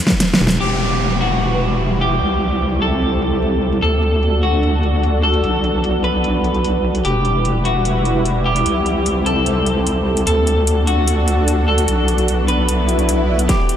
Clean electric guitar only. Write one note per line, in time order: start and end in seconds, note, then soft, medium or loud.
0.60 1.13 G4 medium
1.21 1.93 F#4 medium
2.01 2.74 G4 medium
2.82 3.75 A4 medium
3.82 4.35 A4 medium
4.43 5.16 F#4 medium
5.23 5.96 A4 medium
6.04 6.97 B4 medium
7.05 7.57 G4 medium
7.65 8.38 F#4 medium
8.46 9.18 G4 medium
9.26 10.19 A4 medium
10.27 10.79 A4 medium
10.87 11.60 F#4 medium
11.68 12.40 A4 medium
12.48 13.41 B4 medium
13.49 13.77 G4 medium